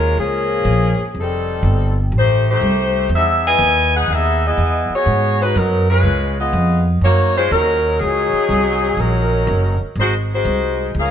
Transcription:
Already playing: D#2 G#3 C#4 F4 A#4
0.17 C#2 F3 A#3 C#4 G#4
0.65 A#1
0.99 muted upright bass stroke
1.14 F1
1.20 G3 C4 D#4 A4
1.63 G1
2.12 A1
2.18 A3 D#4 G4 C5
2.50 A3 D#4 G4 C5
2.61 C2
3.09 E2
3.16 B3 D#4 G#4 E5
3.47 E4 B4 D#5 G#5
3.58 D#2
3.95 D#4 G#4 B4 F#5
4.08 D#2
4.12 B3 D#4 G#4 E5
4.46 B3 E4 G#4 D#5
4.57 E2
4.90 muted upright bass stroke
4.94 B3 F#4 G#4 C#5
5.06 G#2
5.42 G#3 D#4 F#4 B4
5.55 F#2 F#3 B3 D#4 A#4
5.89 G#3 C#4 F4 B4
6.04 C#2
6.40 B3 F4 G#4 D#5
6.53 F2
7.01 F#2 A#3 D#4 F#4 C#5
7.37 G#3 C#4 F4 C5
7.51 D#2 F#3 C#4 D#4 A#4
8.00 C#2 F#3 C#4 D#4 G#4
8.33 muted upright bass stroke
8.49 C2
8.97 A#1 F#3 C#4 D#4 A#4
9.47 F#1
9.81 muted upright bass stroke
9.95 G#1 D#4 F#4 C5
10.00 G#3
10.33 G#3 D#4 F#4 C5
10.45 C2
10.95 C#2
10.99 C#4 G#4 A#4 F5

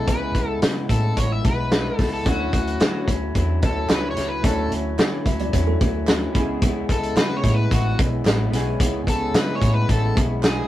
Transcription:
Already playing: B3 C#4 E4 G#4
0.07 C#2 C#3 G#3 B3 E4 B4, kick, closed hi-hat
0.35 C#2 G#3 B3 E4, kick, closed hi-hat
0.48 A4
0.62 C#3 G#3 B3 E4, snare, closed hi-hat
0.89 A2 G#3 B3 E4 A4, kick, closed hi-hat
1.16 A1 C#3 G#3 B3 E4 C#5, kick, closed hi-hat
1.32 E5
1.44 B1 G#3 B3 E4 B4, kick, closed hi-hat
1.70 C#3 G#3 B3 E4, snare, closed hi-hat
1.97 C#2 B3 E4 A4, kick, snare, open hi-hat
2.02 G#3
2.13 A4
2.24 D2 D3 F#3 A3 C#4 E4, kick, closed hi-hat
2.28 E4 F#4
2.53 D2 F#3 C#4, kick, closed hi-hat
2.67 closed hi-hat
2.80 D3 F#3 C#4 E4, snare, clap, closed hi-hat
3.07 D2 F#3 C#4 E4, kick, closed hi-hat
3.35 E2 D3 F#3 C#4 E4, kick, closed hi-hat
3.62 D2 F#3 C#4 E4 A4, kick, closed hi-hat
3.89 C#2 D3 F#3 C#4 E4 B4, snare, clap, closed hi-hat
4.11 C#5
4.16 C#2 F#3 C#4 E4, snare, closed hi-hat
4.28 B4
4.42 D2 D3 F#3 A3 C#4 E4, kick, closed hi-hat
4.46 E4 F#4 A4
4.70 D2 F#3 C#4 E4, closed hi-hat
4.98 D3 F#3 C#4 E4, snare, clap, closed hi-hat
5.25 D2 F#3 C#4 E4 E5, kick, closed hi-hat
5.39 D5, closed hi-hat
5.52 E2 D3 F#3 C#4 E4 C#5, kick, closed hi-hat
5.67 A4
5.80 D2 F#3 C#4 E4, kick, closed hi-hat
6.07 D3 F#3 C#4 E4, snare, clap, closed hi-hat
6.32 C#2 B3 C#4 E4, kick, closed hi-hat
6.38 G#3 G#4
6.62 C#3 G#3 B3 E4, kick, closed hi-hat
6.88 C#2 G#3 B3 E4 A4, kick, closed hi-hat
7.03 closed hi-hat
7.15 C#3 G#3 B3 E4 B4, snare, clap, closed hi-hat
7.37 C#5
7.43 A2 B3 E4, kick, closed hi-hat
7.47 G#3
7.54 B4
7.71 A1 C#3 G#3 B3 E4 F#4, kick, closed hi-hat
7.98 B1 G#3 B3 E4, kick, closed hi-hat
8.24 A1 C#3 G#3 B3 E4, snare, clap, closed hi-hat
8.50 B1 B3 C#4 E4, snare, closed hi-hat
8.55 G#3 G#4
8.79 C#2 C#3 G#3 B3 E4, kick, closed hi-hat
9.06 C#2 G#3 B3 E4 A4, kick, closed hi-hat
9.33 C#3 G#3 B3 E4 B4, snare, clap, closed hi-hat
9.55 C#5
9.60 A2 G#3 B3 E4, kick, closed hi-hat
9.74 B4
9.88 A1 C#3 G#3 B3 E4, kick, closed hi-hat
9.92 A4
10.15 B1 B3 C#4 E4 G#4, kick, closed hi-hat
10.19 G#3
10.42 C#3 G#3 B3 E4 G#4, snare, clap, closed hi-hat

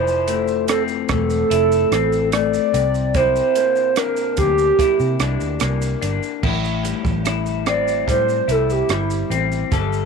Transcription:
Already playing: F1 F3 E4 C5
0.08 shaker
0.27 A3, closed hi-hat, shaker
0.48 shaker
0.68 C4 A4, cross-stick, closed hi-hat, shaker
0.88 shaker
1.09 E1 A3 A4, kick, cross-stick, closed hi-hat, shaker
1.30 shaker
1.50 F1 E4, closed hi-hat, shaker
1.72 shaker
1.91 A1 C4, cross-stick, closed hi-hat, shaker
2.12 shaker
2.32 A3 D5, cross-stick, closed hi-hat, shaker
2.54 shaker
2.74 C2 C3, closed hi-hat, shaker
2.94 shaker
3.15 C3 E4 C5, kick, closed hi-hat, shaker
3.36 shaker
3.56 A#3, closed hi-hat, shaker
3.76 shaker
3.96 D4 A#4, cross-stick, closed hi-hat, shaker
4.17 shaker
4.37 D2 A#3 G4, kick, closed hi-hat, shaker
4.58 shaker
4.79 E4, kick, closed hi-hat, shaker
5.00 C3, shaker
5.20 C2 D4, cross-stick, closed hi-hat, shaker
5.41 D2, shaker
5.60 C2 A#3, cross-stick, closed hi-hat, shaker
5.82 shaker
6.02 G1 D4, closed hi-hat, shaker
6.23 shaker
6.43 A1 A2 E4, kick, crash
6.65 shaker
6.83 G3, closed hi-hat, shaker
7.05 A1, kick, shaker
7.25 E4, cross-stick, closed hi-hat, shaker
7.46 shaker
7.66 C4 D5, cross-stick, closed hi-hat, shaker
7.88 shaker
8.07 A2 G3 C5, kick, closed hi-hat, shaker
8.29 shaker
8.48 C2 E4 A4, closed hi-hat, shaker
8.70 G4, shaker
8.89 G1 G3 E4, cross-stick, closed hi-hat, shaker
9.10 shaker
9.30 A1 C4, closed hi-hat, shaker
9.52 shaker
9.72 G1 G3 A4, kick, closed hi-hat, shaker
9.93 shaker

